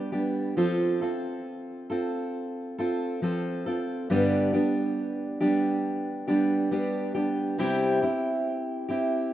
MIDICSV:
0, 0, Header, 1, 2, 480
1, 0, Start_track
1, 0, Tempo, 887574
1, 308, Time_signature, 4, 2, 24, 8
1, 1745, Tempo, 872093
1, 5106, End_track
2, 0, Start_track
2, 0, Title_t, "Steel-string acoustic guitar"
2, 0, Program_c, 0, 25
2, 0, Note_on_c, 0, 55, 44
2, 0, Note_on_c, 0, 59, 44
2, 0, Note_on_c, 0, 62, 48
2, 0, Note_on_c, 0, 67, 47
2, 59, Note_off_c, 0, 67, 0
2, 62, Note_off_c, 0, 62, 0
2, 65, Note_off_c, 0, 55, 0
2, 65, Note_on_c, 0, 67, 40
2, 67, Note_off_c, 0, 59, 0
2, 69, Note_on_c, 0, 62, 35
2, 72, Note_on_c, 0, 59, 34
2, 75, Note_on_c, 0, 55, 34
2, 305, Note_off_c, 0, 55, 0
2, 307, Note_on_c, 0, 53, 70
2, 308, Note_off_c, 0, 59, 0
2, 308, Note_off_c, 0, 67, 0
2, 309, Note_off_c, 0, 62, 0
2, 310, Note_on_c, 0, 60, 72
2, 312, Note_on_c, 0, 65, 77
2, 314, Note_on_c, 0, 69, 71
2, 541, Note_off_c, 0, 69, 0
2, 548, Note_off_c, 0, 53, 0
2, 548, Note_off_c, 0, 65, 0
2, 548, Note_on_c, 0, 69, 46
2, 550, Note_off_c, 0, 60, 0
2, 554, Note_on_c, 0, 65, 44
2, 557, Note_on_c, 0, 60, 41
2, 1020, Note_off_c, 0, 69, 0
2, 1025, Note_off_c, 0, 65, 0
2, 1026, Note_on_c, 0, 69, 52
2, 1030, Note_off_c, 0, 60, 0
2, 1032, Note_on_c, 0, 65, 47
2, 1036, Note_on_c, 0, 60, 35
2, 1500, Note_off_c, 0, 69, 0
2, 1505, Note_off_c, 0, 65, 0
2, 1506, Note_on_c, 0, 69, 58
2, 1511, Note_off_c, 0, 60, 0
2, 1511, Note_on_c, 0, 65, 45
2, 1516, Note_on_c, 0, 60, 41
2, 1738, Note_off_c, 0, 60, 0
2, 1741, Note_on_c, 0, 53, 51
2, 1742, Note_off_c, 0, 65, 0
2, 1745, Note_off_c, 0, 69, 0
2, 1745, Note_on_c, 0, 60, 56
2, 1748, Note_on_c, 0, 65, 55
2, 1751, Note_on_c, 0, 69, 64
2, 1978, Note_off_c, 0, 69, 0
2, 1983, Note_off_c, 0, 65, 0
2, 1984, Note_on_c, 0, 69, 46
2, 1985, Note_off_c, 0, 53, 0
2, 1987, Note_off_c, 0, 60, 0
2, 1990, Note_on_c, 0, 65, 42
2, 1994, Note_on_c, 0, 60, 38
2, 2224, Note_on_c, 0, 43, 65
2, 2225, Note_on_c, 0, 50, 81
2, 2226, Note_off_c, 0, 69, 0
2, 2227, Note_off_c, 0, 60, 0
2, 2227, Note_on_c, 0, 55, 76
2, 2228, Note_off_c, 0, 65, 0
2, 2229, Note_on_c, 0, 59, 85
2, 2230, Note_on_c, 0, 62, 80
2, 2231, Note_on_c, 0, 67, 76
2, 2456, Note_off_c, 0, 67, 0
2, 2461, Note_off_c, 0, 62, 0
2, 2463, Note_on_c, 0, 67, 44
2, 2465, Note_off_c, 0, 59, 0
2, 2466, Note_off_c, 0, 43, 0
2, 2466, Note_off_c, 0, 50, 0
2, 2467, Note_off_c, 0, 55, 0
2, 2467, Note_on_c, 0, 62, 51
2, 2471, Note_on_c, 0, 59, 42
2, 2474, Note_on_c, 0, 55, 37
2, 2940, Note_off_c, 0, 62, 0
2, 2942, Note_off_c, 0, 67, 0
2, 2944, Note_off_c, 0, 59, 0
2, 2944, Note_on_c, 0, 67, 55
2, 2947, Note_on_c, 0, 62, 54
2, 2950, Note_on_c, 0, 59, 45
2, 2952, Note_off_c, 0, 55, 0
2, 2954, Note_on_c, 0, 55, 44
2, 3421, Note_off_c, 0, 62, 0
2, 3421, Note_off_c, 0, 67, 0
2, 3423, Note_on_c, 0, 67, 60
2, 3425, Note_off_c, 0, 59, 0
2, 3427, Note_on_c, 0, 62, 60
2, 3431, Note_on_c, 0, 59, 49
2, 3432, Note_off_c, 0, 55, 0
2, 3435, Note_on_c, 0, 55, 44
2, 3656, Note_off_c, 0, 55, 0
2, 3661, Note_off_c, 0, 59, 0
2, 3663, Note_on_c, 0, 55, 55
2, 3664, Note_off_c, 0, 62, 0
2, 3664, Note_off_c, 0, 67, 0
2, 3668, Note_on_c, 0, 59, 61
2, 3670, Note_on_c, 0, 62, 65
2, 3673, Note_on_c, 0, 67, 56
2, 3895, Note_off_c, 0, 67, 0
2, 3899, Note_off_c, 0, 62, 0
2, 3902, Note_on_c, 0, 67, 51
2, 3903, Note_off_c, 0, 59, 0
2, 3904, Note_off_c, 0, 55, 0
2, 3906, Note_on_c, 0, 62, 46
2, 3910, Note_on_c, 0, 59, 45
2, 3912, Note_on_c, 0, 55, 37
2, 4139, Note_off_c, 0, 55, 0
2, 4143, Note_off_c, 0, 67, 0
2, 4143, Note_on_c, 0, 48, 81
2, 4144, Note_off_c, 0, 59, 0
2, 4145, Note_off_c, 0, 62, 0
2, 4145, Note_on_c, 0, 55, 78
2, 4147, Note_on_c, 0, 60, 87
2, 4148, Note_on_c, 0, 64, 78
2, 4151, Note_on_c, 0, 67, 84
2, 4376, Note_off_c, 0, 67, 0
2, 4382, Note_off_c, 0, 64, 0
2, 4383, Note_off_c, 0, 48, 0
2, 4383, Note_on_c, 0, 67, 47
2, 4384, Note_off_c, 0, 55, 0
2, 4385, Note_off_c, 0, 60, 0
2, 4388, Note_on_c, 0, 64, 54
2, 4393, Note_on_c, 0, 60, 44
2, 4858, Note_off_c, 0, 67, 0
2, 4859, Note_off_c, 0, 64, 0
2, 4860, Note_on_c, 0, 67, 56
2, 4863, Note_off_c, 0, 60, 0
2, 4865, Note_on_c, 0, 64, 44
2, 4870, Note_on_c, 0, 60, 48
2, 5106, Note_off_c, 0, 60, 0
2, 5106, Note_off_c, 0, 64, 0
2, 5106, Note_off_c, 0, 67, 0
2, 5106, End_track
0, 0, End_of_file